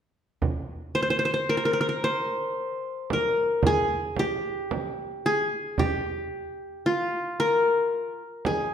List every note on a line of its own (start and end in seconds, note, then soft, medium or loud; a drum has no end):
0.42 frame drum medium
0.95 1.02 C5 medium
1.03 1.10 C5 medium
1.10 1.19 C5 medium
1.19 1.25 C5 medium
1.25 1.33 C5 medium
1.34 2.04 C5 medium
1.49 1.57 A#4 medium
1.57 1.65 A#4 medium
1.65 1.73 A#4 medium
1.73 1.80 A#4 medium
1.81 1.88 A#4 medium
1.89 3.02 A#4 medium
2.04 3.13 C5 medium
3.10 4.26 A#4 medium
3.10 frame drum medium
3.63 4.25 G#4 medium
3.63 frame drum medium
4.17 5.32 G4 medium
4.17 frame drum medium
4.71 frame drum medium
5.26 5.85 G#4 medium
5.78 7.05 G4 medium
5.78 frame drum medium
6.86 8.21 F4 medium
7.40 8.53 A#4 medium
8.45 8.74 G#4 medium
8.45 frame drum medium